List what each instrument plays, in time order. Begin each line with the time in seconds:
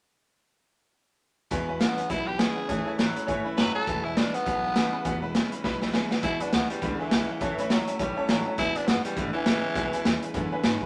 1.51 steel-string acoustic guitar E2 B2 E3 G#3 B3 E4, upright bass E2, clean electric guitar E2 B2, honky-tonk piano B4 E5 G#5, kick, closed hi-hat
1.68 steel-string acoustic guitar E3 G#3 B3 E4, honky-tonk piano B4 E5 G#5
1.79 steel-string acoustic guitar E2 B2 E3 G#3 B3 E4, clean electric guitar E2 C#3, tenor saxophone B3, honky-tonk piano B4 E5 G#5, snare, closed hi-hat
1.97 steel-string acoustic guitar E3 G#3 B3 E4, honky-tonk piano B4 E5 G#5, muted upright bass stroke, closed hi-hat
2.09 upright bass B1, clean electric guitar E2 B2, steel-string acoustic guitar E3 G#3 B3 E4, tenor saxophone E4, honky-tonk piano B4 E5 B5, kick, closed hi-hat
2.26 steel-string acoustic guitar E3 G#3 B3 E4, tenor saxophone G4, honky-tonk piano B4 E5 B5
2.38 steel-string acoustic guitar E2 B2 E3 G#3 B3 E4, clean electric guitar E2 C#3, tenor saxophone G#4, honky-tonk piano B4 E5 F#5, snare, closed hi-hat
2.56 steel-string acoustic guitar E3 G#3 B3 E4, honky-tonk piano B4 E5 B5, muted upright bass stroke
2.68 upright bass A1, clean electric guitar A2 E3, steel-string acoustic guitar A2 E3 A3 C#4 E4, honky-tonk piano C#5 E5 A5, kick, closed hi-hat
2.86 steel-string acoustic guitar A3 C#4 E4, honky-tonk piano C#5 E5 A5
2.98 upright bass A1, steel-string acoustic guitar A2 E3 A3 C#4 E4, clean electric guitar A2 F#3, honky-tonk piano C#5 E5 A5, snare, closed hi-hat
3.15 steel-string acoustic guitar A3 C#4 E4, honky-tonk piano C#5 E5 B5, muted upright bass stroke, closed hi-hat
3.27 upright bass G#1, clean electric guitar A2 E3, steel-string acoustic guitar E3 A3 C#4 E4, honky-tonk piano C#5 E5 G#5, kick, closed hi-hat
3.44 steel-string acoustic guitar A3 C#4 E4, honky-tonk piano C#5 E5 B5, muted upright bass stroke
3.57 upright bass F#1, steel-string acoustic guitar A2 E3 A3 C#4 E4, clean electric guitar A2 F#3, tenor saxophone B4, honky-tonk piano C#5 E5 A5, snare, closed hi-hat
3.75 steel-string acoustic guitar A3 C#4 E4, tenor saxophone A4, honky-tonk piano C#5 E5 A5, muted upright bass stroke
3.87 upright bass E1, clean electric guitar E2 B2, steel-string acoustic guitar E2 B2 E3 G#3 B3 E4, honky-tonk piano B4 E5 G#5, kick, closed hi-hat
4.04 steel-string acoustic guitar E3 G#3 B3 E4, tenor saxophone E4, honky-tonk piano B4 E5 G#5
4.16 steel-string acoustic guitar E2 B2 E3 G#3 B3 E4, clean electric guitar E2 C#3, tenor saxophone D4, honky-tonk piano B4 E5 G#5, snare, closed hi-hat
4.33 steel-string acoustic guitar E3 G#3 B3 E4, tenor saxophone B3, honky-tonk piano B4 E5 F#5, muted upright bass stroke, closed hi-hat
4.45 upright bass B1, clean electric guitar E2 B2, steel-string acoustic guitar E3 G#3 B3 E4, honky-tonk piano B4 E5 G#5, kick, closed hi-hat
4.63 steel-string acoustic guitar E3 G#3 B3 E4, honky-tonk piano B4 E5 G#5
4.75 steel-string acoustic guitar E2 B2 E3 G#3 B3 E4, clean electric guitar E2 C#3, honky-tonk piano B4 E5 G#5, snare, closed hi-hat
4.92 steel-string acoustic guitar E3 G#3 B3 E4, honky-tonk piano B4 E5 B5, muted upright bass stroke
5.05 upright bass E1, steel-string acoustic guitar E2 B2 E3 G#3 B3 E4, clean electric guitar E2 B2, honky-tonk piano B4 E5 F#5, kick, closed hi-hat
5.22 steel-string acoustic guitar E3 G#3 B3 E4, honky-tonk piano B4 E5 B5
5.34 steel-string acoustic guitar E2 B2 E3 G#3 B3 E4, clean electric guitar E2 C#3, honky-tonk piano B4 E5 G#5, snare, closed hi-hat
5.51 steel-string acoustic guitar E3 G#3 B3 E4, honky-tonk piano B4 E5 B5, muted upright bass stroke, closed hi-hat
5.64 upright bass B1, clean electric guitar E2 B2, steel-string acoustic guitar E3 G#3 B3 E4, honky-tonk piano B4 E5 B5, kick, snare
5.81 steel-string acoustic guitar E3 G#3 B3 E4, honky-tonk piano B4 E5 B5, snare
5.93 steel-string acoustic guitar E2 B2 E3 G#3 B3 E4, clean electric guitar E2 C#3, honky-tonk piano B4 E5 G#5, snare
6.11 steel-string acoustic guitar E3 G#3 B3 E4, honky-tonk piano B4 E5 F#5, muted upright bass stroke, snare
6.22 steel-string acoustic guitar E2 B2 E3 G#3 B3 E4, clean electric guitar E2 B2, tenor saxophone E4, honky-tonk piano B4 E5 G#5, kick, closed hi-hat
6.40 steel-string acoustic guitar E3 G#3 B3 E4, tenor saxophone D4, honky-tonk piano B4 E5 F#5, closed hi-hat
6.52 upright bass D2, clean electric guitar E2 C#3, steel-string acoustic guitar E3 G#3 B3 E4, tenor saxophone B3, honky-tonk piano B4 E5 G#5, snare, closed hi-hat
6.69 steel-string acoustic guitar E3 G#3 B3 E4, tenor saxophone G3, honky-tonk piano B4 E5 G#5, closed hi-hat
6.81 upright bass C#2, steel-string acoustic guitar E2 B2 E3 G#3 B3 E4, clean electric guitar E2 D3, honky-tonk piano B4 E5 B5, kick, closed hi-hat
6.99 tenor saxophone E3, steel-string acoustic guitar E3 G#3 B3 E4, honky-tonk piano B4 E5 G#5, muted upright bass stroke
7.11 upright bass B1, clean electric guitar E2 C#3, steel-string acoustic guitar E3 G#3 B3 E4, honky-tonk piano B4 E5 F#5, snare, closed hi-hat
7.27 steel-string acoustic guitar E3 G#3 B3 E4, honky-tonk piano B4 E5 F#5, muted upright bass stroke
7.40 upright bass A1, steel-string acoustic guitar A2 E3 A3 C#4 E4, clean electric guitar A2 E3, honky-tonk piano C#5 E5 A5, kick, closed hi-hat
7.58 steel-string acoustic guitar A3 C#4 E4, honky-tonk piano C#5 E5 B5, muted upright bass stroke, closed hi-hat
7.69 upright bass C#2, clean electric guitar A2 F#3, steel-string acoustic guitar E3 A3 C#4 E4, honky-tonk piano C#5 E5 F#5, snare, closed hi-hat
7.87 steel-string acoustic guitar A3 C#4 E4, honky-tonk piano C#5 E5 A5, closed hi-hat
7.99 upright bass B1, steel-string acoustic guitar A2 E3 A3 C#4 E4, clean electric guitar A2 G3, honky-tonk piano C#5 E5 A5, kick, closed hi-hat
8.15 steel-string acoustic guitar A3 C#4 E4, honky-tonk piano C#5 E5 A5
8.28 upright bass A1, clean electric guitar A2 F#3, steel-string acoustic guitar E3 A3 C#4 E4, honky-tonk piano C#5 E5 A5, snare, closed hi-hat
8.45 steel-string acoustic guitar A3 C#4 E4, honky-tonk piano C#5 E5 A5, muted upright bass stroke
8.57 upright bass E1, steel-string acoustic guitar E2 B2 E3 G#3 B3 E4, clean electric guitar E2 B2, tenor saxophone E4, honky-tonk piano B4 E5 G#5, kick, closed hi-hat
8.74 steel-string acoustic guitar E3 G#3 B3 E4, tenor saxophone D4, honky-tonk piano B4 E5 G#5, muted upright bass stroke, closed hi-hat
8.87 upright bass F#1, clean electric guitar E2 C#3, steel-string acoustic guitar E3 G#3 B3 E4, tenor saxophone B3, honky-tonk piano B4 E5 F#5, snare, closed hi-hat
9.04 steel-string acoustic guitar E3 G#3 B3 E4, tenor saxophone G3, honky-tonk piano B4 E5 G#5, closed hi-hat
9.16 upright bass G#1, steel-string acoustic guitar E2 B2 E3 G#3 B3 E4, clean electric guitar E2 D3, honky-tonk piano B4 E5 B5, kick, closed hi-hat
9.33 tenor saxophone E3, steel-string acoustic guitar E3 G#3 B3 E4, honky-tonk piano B4 E5 G#5, muted upright bass stroke
9.45 upright bass A1, clean electric guitar E2 C#3, steel-string acoustic guitar E3 G#3 B3 E4, honky-tonk piano B4 E5 G#5, snare, closed hi-hat
9.63 steel-string acoustic guitar E3 G#3 B3 E4, honky-tonk piano B4 E5 G#5, muted upright bass stroke
9.75 upright bass B1, clean electric guitar E2 B2, steel-string acoustic guitar E2 B2 E3 G#3 B3 E4, honky-tonk piano B4 E5 G#5, kick, closed hi-hat
9.93 steel-string acoustic guitar E3 G#3 B3 E4, honky-tonk piano B4 E5 G#5, muted upright bass stroke, closed hi-hat
10.04 clean electric guitar E2 C#3, upright bass E2, steel-string acoustic guitar E3 G#3 B3 E4, honky-tonk piano B4 E5 G#5, snare, closed hi-hat
10.22 steel-string acoustic guitar E3 G#3 B3 E4, honky-tonk piano B4 E5 G#5, closed hi-hat
10.33 clean electric guitar E2 D3, steel-string acoustic guitar E2 B2 E3 G#3 B3 E4, upright bass F#2, honky-tonk piano B4 E5 G#5, kick, closed hi-hat
10.51 steel-string acoustic guitar E3 G#3 B3 E4, honky-tonk piano B4 E5 G#5
10.63 clean electric guitar E2 C#3, upright bass G#2, steel-string acoustic guitar E3 G#3 B3 E4, honky-tonk piano B4 E5 G#5, snare, closed hi-hat
10.80 steel-string acoustic guitar E3 G#3 B3 E4, honky-tonk piano B4 E5 B5, kick